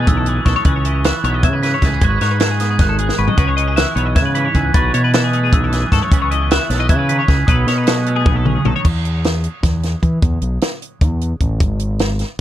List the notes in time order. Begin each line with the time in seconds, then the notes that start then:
Already playing: E3 A3 E4 F#4 G#4
0.07 B1 F#2 E6, kick, closed hi-hat
0.17 A4
0.26 E3 G#4, closed hi-hat
0.45 B1 A3 A4 C#6, kick, snare, closed hi-hat
0.56 C#5
0.65 C#2 C#3 G#4 B4, kick, closed hi-hat
0.76 C#5
0.85 E4 D#5, closed hi-hat
1.04 E3 E5 F#6, snare, closed hi-hat
1.24 B1 B3 C#5, closed hi-hat
1.34 D#5
1.43 G#2 C#3 E5 G#6, kick, closed hi-hat
1.53 B4
1.63 E3 B4 B6, snare, closed hi-hat
1.74 C#5
1.82 C#2 A3 G#4, kick, snare, closed hi-hat
1.93 B3
2.01 G#1 G#2 F#4 B4 G#6, kick, closed hi-hat
2.21 G#2 D#4 C#5 F#6, snare, closed hi-hat
2.31 B4
2.40 G#3 A4 G#6, snare, closed hi-hat
2.51 G#4
2.60 B3 D#6, snare, closed hi-hat
2.70 G#4
2.79 G#1 D#3 F#6, kick, snare, closed hi-hat
2.89 A4
2.98 G#3 G#4, closed hi-hat
3.09 snare
3.18 G#1 B3 B4 C#6
3.28 D#5, floor tom
3.38 C#2 C#3 F#4 B4, kick, closed hi-hat
3.48 G#4 C#5
3.57 C#4 D#5, closed hi-hat
3.67 E4
3.76 E3 E5 F#6, snare, closed hi-hat
3.96 B1 B3 C#5, closed hi-hat
4.06 D#5
4.15 G#2 C#3 E5 G#6, kick, snare, closed hi-hat
4.25 B4
4.35 E3 B4 B6, closed hi-hat
4.45 C#5
4.55 C#2 B3 G#4, kick, closed hi-hat
4.74 B1 B2 F#4 B4 A6, kick, closed hi-hat
4.94 B2 E4 C#5 G#6, closed hi-hat
5.04 B4
5.13 E3 A4 F#6, snare, closed hi-hat
5.24 G#4
5.33 A3 D#6, closed hi-hat
5.44 G#4
5.52 B1 F#2 E6, kick, closed hi-hat
5.64 A4
5.72 E3 G#4, snare, closed hi-hat
5.92 G#2 A3 A4 C#6, kick, snare, closed hi-hat
6.02 C#5
6.11 C#2 C#3 E3 B3 E4 G#4 B4, kick, closed hi-hat
6.22 C#5
6.31 E4 D#5, closed hi-hat
6.51 E3 E5 F#6, snare, closed hi-hat
6.70 B1 A3 C#5, snare, closed hi-hat
6.80 B3 D#5
6.89 C#3 E3 E5 G#6, kick, closed hi-hat
6.99 B4
7.09 D#3 B4 B6, closed hi-hat
7.19 C#5
7.28 C#2 C#3 G#4 G#6, kick, snare, closed hi-hat
7.47 B1 B2 A4 B4 D#6, kick, closed hi-hat
7.67 B2 C#4 C#5, snare, closed hi-hat
7.78 D#4 B4
7.87 F#3 A4, snare, closed hi-hat
7.97 G#4
8.06 A3, closed hi-hat
8.16 G#4
8.25 B1 B2, kick, high tom
8.36 A4
8.45 C#3 G#4, mid tom
8.65 B1 D#3 A4, floor tom
8.76 C#5
8.85 E2, kick, crash
9.05 closed hi-hat
9.24 snare, closed hi-hat
9.44 closed hi-hat
9.63 E2, kick, snare, closed hi-hat
9.83 snare, closed hi-hat
10.02 E3, kick, closed hi-hat
10.22 E2, kick, closed hi-hat
10.41 B1, closed hi-hat
10.61 snare, closed hi-hat
10.82 closed hi-hat
11.01 E2, kick, closed hi-hat
11.21 closed hi-hat
11.40 A1, kick, closed hi-hat
11.60 G#1, kick, closed hi-hat
11.79 closed hi-hat
11.99 snare, closed hi-hat
12.19 snare, closed hi-hat